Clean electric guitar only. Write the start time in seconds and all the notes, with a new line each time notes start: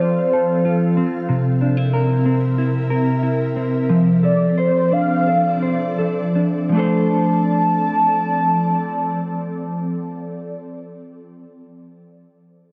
Already playing: F3 C4 A4
0.01 F4
0.33 A4
0.65 F4
0.97 C4
1.29 C3
1.61 D4
1.77 E4
1.93 A#4
2.26 C4
2.58 E4
2.90 A#4
3.23 E4
3.56 C4
3.89 F3
4.23 A4
4.58 C5
4.92 D4
5.27 A4
5.62 C5
5.98 A4
6.35 D4
6.69 F3 A3
6.75 D4 A4
6.79 C5